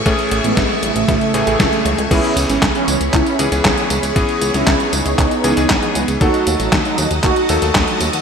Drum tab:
CC |----------------|x---------------|----------------|----------------|
HH |xxxxx-xxxxxxxxxx|xxxxxxxxxxxxxxxx|xxxxxxxxxxxxxxxx|xxxxxxxxxxxxxxxx|
TB |----------------|xxxxxxxxxxxxxxxx|xxxxxxxxxxxxxxxx|xxxxxxxxxxxxxxxx|
CP |----------------|----x---x---x---|----x---x---x---|----x---x---x---|
SD |----o---o---o---|----o-------o---|---oo-------o---|----o-------o---|
BD |o---o---o---o---|o---o---o---o---|o---o---o---o---|o---o---o---o---|